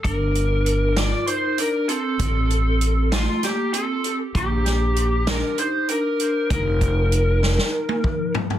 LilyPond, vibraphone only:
\new Staff \with { instrumentName = "Vibraphone" } { \time 7/8 \key bes \major \tempo 4 = 98 d'4. f'8 ees'8 d'8 c'8~ | c'4. a8 bes8 c'8. r16 | bes4. d'8 ees'8 d'4 | ees'2. r8 | }